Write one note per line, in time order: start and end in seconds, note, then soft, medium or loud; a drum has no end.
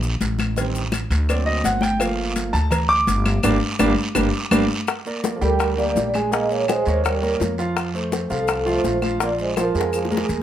0.00 0.17 A#1 loud
0.00 high conga soft
0.00 maracas medium
0.21 1.05 A1 medium
0.21 cowbell medium
0.21 high conga medium
0.21 short guiro medium
0.21 maracas medium
0.39 cowbell medium
0.39 high conga medium
0.39 short guiro medium
0.39 claves medium
0.39 maracas soft
0.56 0.81 D#3 medium
0.56 0.81 G3 medium
0.56 0.81 C4 medium
0.56 cowbell loud
0.56 high conga soft
0.56 long guiro medium
0.56 maracas medium
0.75 high conga soft
0.75 maracas medium
0.92 cowbell medium
0.92 high conga loud
0.92 short guiro medium
0.92 claves medium
0.92 maracas medium
1.10 1.61 D2 loud
1.10 cowbell medium
1.10 high conga soft
1.10 short guiro medium
1.10 maracas soft
1.28 1.80 F#3 medium
1.28 1.80 A#3 soft
1.28 1.80 C4 medium
1.28 1.47 D5 medium
1.28 cowbell loud
1.28 high conga soft
1.28 long guiro medium
1.28 claves medium
1.28 maracas medium
1.46 1.64 D#5 loud
1.46 high conga soft
1.64 2.49 G1 loud
1.64 1.82 F#5 medium
1.64 cowbell medium
1.64 high conga medium
1.64 short guiro medium
1.64 maracas medium
1.81 2.00 G5 loud
1.81 cowbell medium
1.81 high conga medium
1.81 short guiro medium
1.81 maracas soft
1.99 2.51 F3 medium
1.99 2.51 A3 medium
1.99 2.51 A#3 medium
1.99 2.50 F5 medium
1.99 cowbell loud
1.99 high conga soft
1.99 long guiro medium
1.99 claves medium
1.99 maracas medium
2.18 high conga soft
2.36 cowbell medium
2.36 high conga medium
2.36 short guiro medium
2.36 maracas medium
2.53 3.04 D2 loud
2.53 2.71 A5 loud
2.53 high conga soft
2.53 short guiro medium
2.53 maracas soft
2.71 2.89 A#5 medium
2.71 cowbell loud
2.71 high conga soft
2.71 low conga medium
2.71 long guiro medium
2.71 claves medium
2.71 maracas medium
2.89 3.00 D6 loud
2.89 high conga soft
3.07 3.41 G1 loud
3.07 cowbell medium
3.07 high conga medium
3.07 short guiro medium
3.07 maracas medium
3.26 cowbell medium
3.26 high conga medium
3.26 short guiro medium
3.26 claves medium
3.26 maracas soft
3.43 3.58 G1 loud
3.43 3.56 G3 loud
3.43 3.56 A#3 loud
3.43 3.55 D4 loud
3.43 cowbell loud
3.43 high conga loud
3.43 long guiro loud
3.43 claves loud
3.43 maracas loud
3.79 3.93 G1 loud
3.79 3.91 G3 loud
3.79 3.91 A#3 loud
3.79 3.91 D4 loud
3.79 cowbell medium
3.79 high conga loud
3.79 long guiro medium
3.79 claves loud
3.79 maracas loud
4.15 4.29 G1 loud
4.15 4.27 G3 loud
4.15 4.27 A#3 medium
4.15 4.27 D4 medium
4.15 cowbell loud
4.15 high conga loud
4.15 long guiro loud
4.15 claves medium
4.15 maracas loud
4.51 4.65 G1 loud
4.51 4.63 G3 loud
4.51 4.63 A#3 loud
4.51 4.63 D4 loud
4.51 cowbell loud
4.51 high conga loud
4.51 long guiro loud
4.51 claves loud
4.51 maracas loud
4.87 high bongo medium
4.87 high conga soft
4.87 long guiro medium
4.87 claves medium
4.87 maracas medium
5.06 5.36 A#3 medium
5.06 5.36 A#4 medium
5.06 5.36 D5 medium
5.06 high conga soft
5.06 maracas soft
5.24 high bongo medium
5.24 high conga medium
5.24 short guiro medium
5.24 maracas medium
5.35 5.41 F3 medium
5.35 5.42 A4 medium
5.41 5.92 D2 medium
5.41 5.71 G3 medium
5.41 5.75 G3 medium
5.41 5.71 G4 medium
5.41 5.80 A#4 medium
5.41 5.71 G5 medium
5.41 high bongo soft
5.41 high conga soft
5.41 short guiro medium
5.41 maracas soft
5.59 high bongo medium
5.59 high conga soft
5.59 long guiro medium
5.59 claves medium
5.59 maracas medium
5.77 6.07 G3 medium
5.77 6.11 A#3 medium
5.77 6.07 G4 medium
5.77 6.12 D5 medium
5.77 6.07 G5 medium
5.77 high bongo soft
5.77 high conga soft
5.77 maracas soft
5.96 6.80 A#1 medium
5.96 high bongo soft
5.96 low bongo medium
5.96 high conga medium
5.96 short guiro medium
5.96 maracas medium
6.14 6.29 G#3 medium
6.14 6.29 G#4 medium
6.14 6.30 G#5 medium
6.14 high bongo soft
6.14 high conga medium
6.14 short guiro medium
6.14 claves medium
6.14 maracas soft
6.32 6.61 G#3 medium
6.32 6.49 A#3 medium
6.32 6.61 G#4 medium
6.32 6.51 D#5 loud
6.32 6.62 G#5 medium
6.32 high bongo medium
6.32 high conga soft
6.32 long guiro medium
6.32 maracas medium
6.51 6.67 A#3 medium
6.51 6.69 C#5 medium
6.51 high conga soft
6.51 maracas soft
6.68 6.83 G#3 medium
6.68 7.02 G#3 medium
6.68 6.83 G#4 medium
6.68 7.06 C5 medium
6.68 6.83 G#5 medium
6.68 high bongo medium
6.68 high conga medium
6.68 short guiro medium
6.68 claves medium
6.68 maracas medium
6.86 7.37 D#2 loud
6.86 7.17 A#3 medium
6.86 7.16 A#4 medium
6.86 7.16 C#5 medium
6.86 high bongo soft
6.86 high conga soft
6.86 short guiro medium
6.86 maracas soft
7.04 7.39 G3 medium
7.04 7.39 A#4 medium
7.04 high bongo medium
7.04 high conga soft
7.04 long guiro medium
7.04 claves medium
7.04 maracas medium
7.22 7.52 A#3 medium
7.22 7.52 A#4 medium
7.22 7.52 C#5 medium
7.22 high bongo soft
7.22 high conga soft
7.22 maracas soft
7.40 8.25 F2 medium
7.40 high bongo soft
7.40 low bongo medium
7.40 high conga medium
7.40 short guiro medium
7.40 maracas medium
7.58 7.88 F3 medium
7.58 7.88 F4 medium
7.58 7.89 F5 medium
7.58 high bongo soft
7.58 high conga soft
7.58 short guiro medium
7.58 maracas soft
7.76 high bongo medium
7.76 high conga soft
7.76 long guiro medium
7.76 claves medium
7.76 maracas medium
7.94 8.24 A3 medium
7.94 8.24 A4 medium
7.94 8.24 C5 medium
7.94 high conga soft
7.94 maracas soft
8.12 high bongo medium
8.12 high conga medium
8.12 short guiro medium
8.12 maracas medium
8.30 8.81 C2 loud
8.30 8.64 F3 medium
8.30 8.60 F3 medium
8.30 8.60 F4 medium
8.30 8.69 A4 medium
8.30 8.60 F5 medium
8.30 high bongo soft
8.30 high conga soft
8.30 short guiro medium
8.30 maracas soft
8.48 high bongo medium
8.48 high conga soft
8.48 long guiro medium
8.48 claves medium
8.48 maracas medium
8.65 8.95 F3 medium
8.65 9.01 A3 medium
8.65 8.96 F4 medium
8.65 9.01 C5 medium
8.65 8.96 F5 medium
8.65 high bongo soft
8.65 high conga soft
8.65 maracas soft
8.84 9.69 A#1 medium
8.84 high bongo soft
8.84 low bongo medium
8.84 high conga medium
8.84 short guiro medium
8.84 maracas medium
9.02 9.17 F3 medium
9.02 9.17 F4 medium
9.02 9.17 F5 medium
9.02 high bongo soft
9.02 high conga medium
9.02 short guiro medium
9.02 claves medium
9.02 maracas soft
9.20 9.50 F3 medium
9.20 9.31 A#3 medium
9.20 9.50 F4 medium
9.20 9.31 D5 medium
9.20 high bongo medium
9.20 long guiro medium
9.20 maracas medium
9.39 9.57 G#3 medium
9.39 9.59 C5 medium
9.39 high conga soft
9.39 maracas soft
9.56 9.72 F3 medium
9.56 9.91 F3 medium
9.56 9.72 F4 medium
9.56 9.92 A#4 medium
9.56 9.72 F5 medium
9.56 high bongo medium
9.56 high conga medium
9.56 short guiro medium
9.56 claves medium
9.56 maracas medium
9.75 10.25 F2 medium
9.75 10.04 G#3 medium
9.75 10.05 G#4 medium
9.75 10.05 A#4 medium
9.75 high conga soft
9.75 short guiro medium
9.75 maracas soft
9.81 high bongo medium
9.93 10.27 F3 medium
9.93 10.28 G#4 medium
9.93 high conga soft
9.93 long guiro medium
9.93 claves medium
9.93 maracas medium
10.05 low bongo medium
10.11 10.40 G#3 medium
10.11 10.41 G#4 medium
10.11 10.41 A#4 medium
10.11 high conga medium
10.11 maracas soft
10.17 low bongo medium
10.29 10.43 D#2 medium
10.29 low conga medium
10.29 short guiro medium
10.29 maracas medium